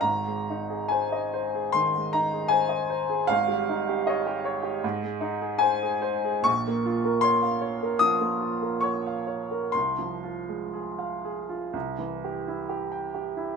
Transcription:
\new Staff \with { instrumentName = "Grand piano" } { \time 4/4 \key aes \major \tempo 4 = 73 << { bes''4 aes''4 c'''8 bes''8 aes''4 | f''4 ees''4. r8 aes''4 | \key f \minor des'''4 c'''4 ees'''4 des'''4 | c'''2. r4 | } \\ { <aes,, aes,>16 aes16 ees'16 aes'16 c''16 ees''16 c''16 aes'16 ees16 aes16 ees'16 aes'16 c''16 ees''16 c''16 aes'16 | <aes,, aes,>16 g16 ees'16 g'16 des''16 g'16 des''16 g'16 aes,16 aes16 ees'16 aes'16 c''16 aes'16 c''16 aes'16 | <bes,, bes,>16 bes16 f'16 bes'16 des''16 f''16 des''16 bes'16 f16 bes16 f'16 bes'16 des''16 f''16 des''16 bes'16 | c,16 f16 f'16 aes16 aes'16 f''16 aes'16 f'16 c,16 e16 g'16 e'16 g'16 g''16 g'16 e'16 | } >> }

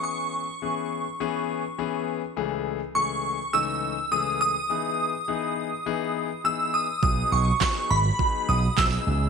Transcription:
<<
  \new Staff \with { instrumentName = "Synth bell" } { \time 4/4 \key b \major \tempo 4 = 103 cis'''2.~ cis'''8 r8 | r4 cis'''4 e'''4 dis'''8 dis'''8~ | dis'''2. e'''8 dis'''8 | dis'''8 cis'''8 cis'''8 b''4 dis'''8 e'''4 | }
  \new Staff \with { instrumentName = "Grand piano" } { \time 4/4 \key b \major <e b cis' gis'>8 r8 <e b cis' gis'>8 r8 <e b cis' gis'>8 r8 <e b cis' gis'>8 r8 | <cis, e a cis' gis'>8 r8 <cis, e a cis' gis'>8 r8 <cis, e a cis' dis'>8 r8 <cis, e a cis' gis'>8 r8 | <e b dis' gis'>8 r8 <e b dis' gis'>8 r8 <e b dis' gis'>8 r8 <e b dis' gis'>8 r8 | <fis b dis' gis'>8 r8 <fis b dis' gis'>8 r8 <fis b dis' gis'>8 r8 <fis b dis' gis'>8 <e b cis' gis'>8 | }
  \new Staff \with { instrumentName = "Slap bass" } { \clef bass \time 4/4 \key b \major r1 | r1 | r1 | b,,8 b,,8 r8 gis,,8 r8 b,,8 b,,8 cis,8 | }
  \new DrumStaff \with { instrumentName = "Drums" } \drummode { \time 4/4 r4 r4 r4 r4 | r4 r4 r4 r4 | r4 r4 r4 r4 | bd4 <hc bd sn>4 bd4 <hc bd sn>4 | }
>>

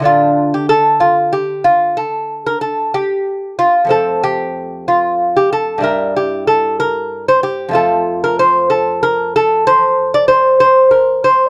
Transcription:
<<
  \new Staff \with { instrumentName = "Lute" } { \time 12/8 \key f \major \tempo 4. = 63 f'8. g'16 a'8 f'8 g'8 f'8 a'8. bes'16 a'8 g'4 f'8 | a'8 g'4 f'8. g'16 a'8 bes'8 g'8 a'8 bes'8. c''16 g'8 | a'8. bes'16 c''8 a'8 bes'8 a'8 c''8. d''16 c''8 c''8 bes'8 c''8 | }
  \new Staff \with { instrumentName = "Lute" } { \time 12/8 \key f \major <d a d'>1. | <f, a c'>2. <g, g e'>2. | <f, a f'>1. | }
>>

